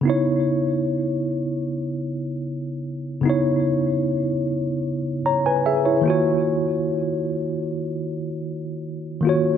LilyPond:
\new Staff \with { instrumentName = "Tine electric piano" } { \time 4/4 \key cis \dorian \tempo 4 = 75 << { r1 | r2 r8 <cis'' ais''>16 <b' gis''>16 <gis' e''>16 <e' cis''>8 r16 | r1 | } \\ { <cis b dis' e' cis''>1 | <cis b dis' e' cis''>2.~ <cis b dis' e' cis''>8 <dis ais eis' fis' cis''>8~ | <dis ais eis' fis' cis''>2.~ <dis ais eis' fis' cis''>8 <dis ais eis' fis' cis''>8 | } >> }